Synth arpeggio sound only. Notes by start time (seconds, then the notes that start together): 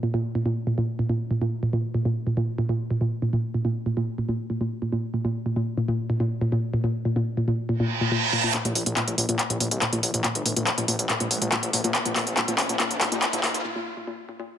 0.03 A#2
0.14 A#2
0.35 A#2
0.46 A#2
0.67 A#2
0.78 A#2
0.99 A#2
1.09 A#2
1.31 A#2
1.42 A#2
1.63 A#2
1.73 A#2
1.94 A#2
2.05 A#2
2.27 A#2
2.37 A#2
2.58 A#2
2.69 A#2
2.91 A#2
3.01 A#2
3.22 A#2
3.33 A#2
3.54 A#2
3.65 A#2
3.86 A#2
3.97 A#2
4.18 A#2
4.29 A#2
4.50 A#2
4.61 A#2
4.82 A#2
4.92 A#2
5.14 A#2
5.25 A#2
5.46 A#2
5.56 A#2
5.78 A#2
5.88 A#2
6.10 A#2
6.20 A#2
6.41 A#2
6.52 A#2
6.74 A#2
6.84 A#2
7.05 A#2
7.16 A#2
7.37 A#2
7.48 A#2
7.69 A#2
7.80 A#2
8.01 A#2
8.12 A#2
8.33 A#2
8.44 A#2
8.54 A#2
8.65 A#2
8.86 A#2
8.97 A#2
9.18 A#2
9.29 A#2
9.50 A#2
9.61 A#2
9.82 A#2
9.93 A#2
10.14 A#2
10.24 A#2
10.46 A#2
10.56 A#2
10.78 A#2
10.88 A#2
11.09 A#2
11.20 A#2
11.42 A#2
11.52 A#2
11.73 A#2
11.84 A#2
12.06 A#2
12.16 A#2
12.37 A#2
12.48 A#2
12.69 A#2
12.80 A#2
13.01 A#2
13.12 A#2
13.33 A#2
13.43 A#2
13.65 A#2
13.76 A#2
13.97 A#2
14.07 A#2
14.29 A#2
14.39 A#2